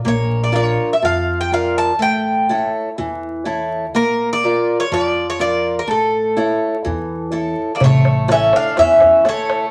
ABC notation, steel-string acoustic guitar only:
X:1
M:4/4
L:1/8
Q:1/4=124
K:none
V:1 name="Steel-string acoustic guitar"
_B,2 [DF_B]2 F,2 [FBd]2 | A,2 [EA^c]2 E,2 [EAc]2 | _B,2 [F_Bd]2 F,2 [FBd]2 | A,2 [EA^c]2 E,2 [EAc]2 |
A,2 [EA^c]2 E,2 [EAc]2 |]